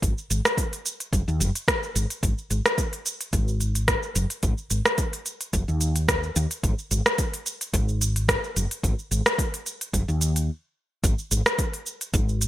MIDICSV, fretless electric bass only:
0, 0, Header, 1, 2, 480
1, 0, Start_track
1, 0, Tempo, 550459
1, 24, Time_signature, 4, 2, 24, 8
1, 10881, End_track
2, 0, Start_track
2, 0, Title_t, "Fretless electric bass"
2, 0, Program_c, 0, 35
2, 21, Note_on_c, 0, 32, 88
2, 104, Note_off_c, 0, 32, 0
2, 263, Note_on_c, 0, 32, 73
2, 344, Note_off_c, 0, 32, 0
2, 982, Note_on_c, 0, 30, 87
2, 1064, Note_off_c, 0, 30, 0
2, 1114, Note_on_c, 0, 39, 82
2, 1217, Note_off_c, 0, 39, 0
2, 1222, Note_on_c, 0, 30, 89
2, 1304, Note_off_c, 0, 30, 0
2, 1703, Note_on_c, 0, 32, 84
2, 1784, Note_off_c, 0, 32, 0
2, 1943, Note_on_c, 0, 32, 91
2, 2024, Note_off_c, 0, 32, 0
2, 2182, Note_on_c, 0, 32, 78
2, 2264, Note_off_c, 0, 32, 0
2, 2903, Note_on_c, 0, 32, 97
2, 3435, Note_off_c, 0, 32, 0
2, 3621, Note_on_c, 0, 30, 83
2, 3704, Note_off_c, 0, 30, 0
2, 3864, Note_on_c, 0, 32, 93
2, 3945, Note_off_c, 0, 32, 0
2, 4101, Note_on_c, 0, 32, 75
2, 4184, Note_off_c, 0, 32, 0
2, 4825, Note_on_c, 0, 30, 86
2, 4906, Note_off_c, 0, 30, 0
2, 4954, Note_on_c, 0, 39, 78
2, 5478, Note_off_c, 0, 39, 0
2, 5545, Note_on_c, 0, 39, 82
2, 5625, Note_off_c, 0, 39, 0
2, 5785, Note_on_c, 0, 32, 90
2, 5866, Note_off_c, 0, 32, 0
2, 6024, Note_on_c, 0, 32, 80
2, 6105, Note_off_c, 0, 32, 0
2, 6747, Note_on_c, 0, 32, 107
2, 7277, Note_off_c, 0, 32, 0
2, 7465, Note_on_c, 0, 30, 82
2, 7546, Note_off_c, 0, 30, 0
2, 7705, Note_on_c, 0, 32, 94
2, 7785, Note_off_c, 0, 32, 0
2, 7944, Note_on_c, 0, 32, 74
2, 8025, Note_off_c, 0, 32, 0
2, 8664, Note_on_c, 0, 30, 92
2, 8745, Note_off_c, 0, 30, 0
2, 8792, Note_on_c, 0, 39, 77
2, 9144, Note_off_c, 0, 39, 0
2, 9624, Note_on_c, 0, 32, 97
2, 9705, Note_off_c, 0, 32, 0
2, 9863, Note_on_c, 0, 32, 76
2, 9945, Note_off_c, 0, 32, 0
2, 10582, Note_on_c, 0, 32, 105
2, 10881, Note_off_c, 0, 32, 0
2, 10881, End_track
0, 0, End_of_file